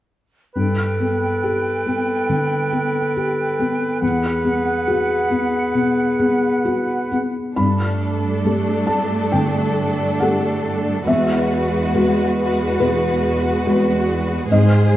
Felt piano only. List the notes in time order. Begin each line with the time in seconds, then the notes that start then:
0.56 G2
1.00 B3 A4
1.44 G4 A4
1.86 B3 A4
2.29 D3
2.72 B3 A4
3.16 G4 A4
3.59 B3 A4
4.02 E2
4.44 B3 G#4
4.87 F#4 G#4
5.30 B3 G#4
5.75 B2
6.19 B3 G#4
6.65 F#4 G#4
7.11 B3 G#4
7.56 G2 B5
8.45 A3 G4 A4
8.87 A5
9.32 D3 G5
10.20 A3 G4 A4 F#5
11.07 E2 E5
11.94 G#3 F#4 B4
12.80 B2 B4
13.66 G#3 F#4 B4
14.51 G#2 D#5